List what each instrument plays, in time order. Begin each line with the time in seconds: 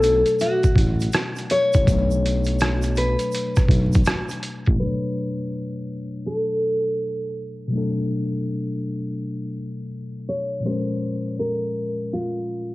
Already playing: analog synth bass B1, tine electric piano B2 F#3 A3 D4 C#5, nylon-string guitar A4
0.03 closed hi-hat, shaker
0.26 closed hi-hat, shaker
0.39 nylon-string guitar F#4, closed hi-hat, shaker
0.63 kick, closed hi-hat, shaker
0.76 analog synth bass A1, kick, closed hi-hat
1.00 closed hi-hat, shaker
1.12 cross-stick, closed hi-hat, shaker
1.36 closed hi-hat, shaker
1.50 nylon-string guitar C#5, closed hi-hat
1.73 analog synth bass A1, kick, closed hi-hat, shaker
1.83 tine electric piano B2 F#3
1.87 analog synth bass B1, tine electric piano A3 D4, kick, closed hi-hat, shaker
1.92 tine electric piano C#5
2.11 shaker
2.26 closed hi-hat
2.44 closed hi-hat, shaker
2.59 cross-stick, closed hi-hat, shaker
2.82 closed hi-hat, shaker
2.95 nylon-string guitar B4, closed hi-hat, shaker
3.19 closed hi-hat, shaker
3.32 closed hi-hat, shaker
3.56 kick, cross-stick, closed hi-hat, shaker
3.69 analog synth bass B1, kick, closed hi-hat
3.93 kick, closed hi-hat, shaker
4.05 cross-stick, closed hi-hat, shaker
4.29 closed hi-hat, shaker
4.43 closed hi-hat
4.65 analog synth bass A1, kick, closed hi-hat, shaker
4.75 tine electric piano B2 F#3
4.80 tine electric piano A3 D4, nylon-string guitar B4
4.85 tine electric piano C#5
6.26 nylon-string guitar A4
7.68 tine electric piano B2 F#3
7.73 tine electric piano A3 D4
7.78 tine electric piano A4
10.29 nylon-string guitar C#5
10.60 tine electric piano A#2 F3
10.65 tine electric piano G#3 C#4, nylon-string guitar C5
10.70 tine electric piano A#4
11.39 nylon-string guitar A#4
12.13 nylon-string guitar F4